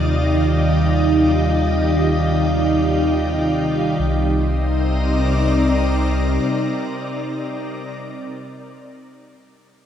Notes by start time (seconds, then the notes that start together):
Already playing: D#2 C3 D#3 G3 D#4 F4 G4 D5
3.98 C2 C3 G3
4.10 C4
4.22 D#4
4.35 A#4
4.48 D5